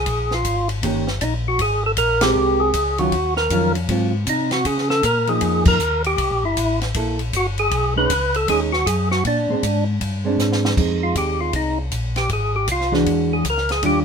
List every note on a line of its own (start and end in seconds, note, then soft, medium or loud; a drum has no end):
0.00 0.34 G#4 medium
0.06 0.44 A#1 medium
0.06 kick soft
0.06 ride medium
0.31 0.68 F4 medium
0.31 snare soft
0.44 0.82 G#1 medium
0.44 kick soft
0.44 hi-hat pedal medium
0.44 ride medium
0.69 ride soft
0.83 1.20 G1 medium
0.83 1.05 D#3 medium
0.83 1.05 A#3 medium
0.83 1.06 C#4 medium
0.83 1.06 G4 medium
0.83 kick soft
0.83 ride medium
1.07 snare soft
1.21 1.58 A#1 medium
1.21 1.23 D4 medium
1.21 1.34 D#4 medium
1.21 kick soft
1.21 hi-hat pedal soft
1.21 ride medium
1.48 1.61 F#4 medium
1.59 1.96 G#1 medium
1.59 1.83 G#4 loud
1.59 kick soft
1.59 ride medium
1.86 1.92 A4 medium
1.97 2.34 A#1 medium
1.97 2.23 A#4 medium
1.97 kick soft
1.97 hi-hat pedal medium
1.97 ride medium
2.21 2.71 G#3 medium
2.21 2.72 C4 medium
2.21 2.61 G4 loud
2.21 2.72 G4 medium
2.21 2.72 A#4 medium
2.21 snare medium
2.21 ride medium
2.35 2.73 C2 medium
2.60 2.99 G#4 loud
2.74 3.11 C#2 medium
2.74 kick soft
2.74 hi-hat pedal medium
2.74 ride medium
2.98 3.11 D#3 medium
2.98 3.11 F#3 medium
2.98 3.12 C#4 medium
2.98 3.12 F4 medium
2.98 3.34 F#4 medium
2.98 ride soft
3.12 3.49 D#2 medium
3.12 kick soft
3.12 ride medium
3.37 3.73 A#4 medium
3.37 snare soft
3.50 3.88 F2 medium
3.50 3.73 D#3 medium
3.50 3.73 F#3 medium
3.50 3.73 C#4 medium
3.50 3.73 F4 medium
3.50 kick soft
3.50 hi-hat pedal soft
3.50 ride medium
3.75 ride soft
3.88 4.26 G#2 medium
3.88 4.11 F#3 medium
3.88 4.11 C4 medium
3.88 4.11 F4 medium
3.88 kick soft
3.88 ride medium
4.27 4.64 C3 medium
4.27 4.51 D#4 medium
4.27 kick soft
4.27 hi-hat pedal medium
4.27 ride medium
4.51 4.66 F#4 medium
4.51 snare medium
4.51 ride soft
4.65 5.02 C#3 medium
4.65 4.88 G#4 medium
4.65 kick soft
4.65 ride medium
4.78 snare soft
4.90 5.04 A4 medium
4.90 snare soft
5.03 5.41 A#2 medium
5.03 5.29 A#4 loud
5.03 kick soft
5.03 hi-hat pedal medium
5.03 ride medium
5.27 5.77 F3 medium
5.27 5.77 A#3 medium
5.27 5.78 D#4 medium
5.27 5.64 G#4 medium
5.27 ride soft
5.41 5.79 F2 medium
5.41 kick soft
5.41 ride medium
5.65 6.03 A#4 medium
5.65 kick medium
5.65 crash medium
5.79 6.17 D#2 medium
5.79 hi-hat pedal medium
6.04 6.45 G4 medium
6.04 ride soft
6.18 6.30 C2 medium
6.18 kick soft
6.18 ride medium
6.31 6.44 A#1 medium
6.43 6.55 G1 medium
6.43 6.80 E4 medium
6.57 6.94 A1 medium
6.57 kick soft
6.57 hi-hat pedal medium
6.57 ride medium
6.81 snare soft
6.81 ride soft
6.94 7.32 A#1 medium
6.94 7.17 A#3 medium
6.94 7.17 E4 medium
6.94 7.18 A4 medium
6.94 kick soft
6.94 ride medium
7.19 ride soft
7.33 7.70 G1 medium
7.33 7.47 F#4 medium
7.33 kick soft
7.33 hi-hat pedal medium
7.33 ride medium
7.58 7.94 G#4 medium
7.58 ride soft
7.71 8.08 B1 medium
7.71 kick soft
7.71 ride medium
7.96 8.08 G#3 medium
7.96 8.09 C#4 medium
7.96 8.09 D#4 medium
7.96 8.36 B4 medium
8.10 8.47 C#2 loud
8.10 kick soft
8.10 hi-hat pedal soft
8.10 ride medium
8.34 8.48 A4 medium
8.34 ride soft
8.48 8.85 D#2 medium
8.48 8.70 G#3 medium
8.48 8.70 C#4 medium
8.48 8.71 D#4 medium
8.48 8.60 G#4 loud
8.48 kick soft
8.48 ride medium
8.72 8.87 F#4 medium
8.72 snare soft
8.86 9.23 F#2 loud
8.86 9.09 G#4 medium
8.86 kick soft
8.86 hi-hat pedal medium
8.86 ride medium
9.11 9.24 F#4 medium
9.11 snare soft
9.25 9.47 A#2 medium
9.25 9.84 D4 medium
9.25 kick soft
9.25 ride medium
9.49 9.56 A#2 soft
9.49 9.62 G#3 medium
9.49 9.62 C4 medium
9.49 9.62 D4 medium
9.63 10.00 G#2 medium
9.63 kick soft
9.63 hi-hat pedal soft
9.63 ride medium
10.01 10.38 G2 medium
10.01 kick soft
10.01 ride medium
10.25 10.74 G#3 medium
10.25 10.75 C4 medium
10.25 10.75 D4 medium
10.38 10.76 G#2 medium
10.38 snare soft
10.38 hi-hat pedal medium
10.52 snare medium
10.65 snare medium
10.77 11.14 F2 medium
10.77 11.83 G#3 soft
10.77 11.84 C4 soft
10.77 11.84 D#4 soft
10.77 kick medium
10.77 crash medium
11.03 11.16 F4 medium
11.15 11.53 D#2 medium
11.15 11.40 G4 medium
11.15 kick soft
11.15 hi-hat pedal soft
11.15 ride medium
11.41 11.54 F4 medium
11.53 11.91 C2 medium
11.53 11.79 D#4 medium
11.53 kick soft
11.53 ride medium
11.91 12.29 A#1 medium
11.91 kick soft
11.91 hi-hat pedal medium
11.91 ride medium
12.16 12.30 G4 medium
12.16 snare soft
12.16 ride soft
12.29 12.67 G#1 medium
12.29 12.55 G#4 medium
12.29 kick soft
12.29 ride medium
12.56 12.69 G4 medium
12.68 13.05 C2 medium
12.68 kick soft
12.68 hi-hat pedal medium
12.68 ride medium
12.72 12.94 F4 medium
12.81 snare soft
12.92 13.42 E3 medium
12.92 13.42 G#3 medium
12.92 13.42 D4 medium
12.92 13.42 F#4 medium
12.92 snare soft
13.06 13.44 E2 medium
13.06 kick soft
13.06 ride medium
13.33 13.46 G#4 medium
13.45 13.82 C#2 loud
13.45 kick soft
13.45 hi-hat pedal medium
13.45 ride medium
13.50 13.71 A#4 medium
13.58 snare soft
13.69 13.84 G#4 medium
13.69 snare soft
13.69 ride soft
13.82 14.05 D#2 medium
13.82 14.05 D#3 soft
13.82 14.05 G3 soft
13.82 14.05 D4 medium
13.82 14.05 F4 soft
13.82 14.00 G4 medium
13.82 kick soft
13.82 ride medium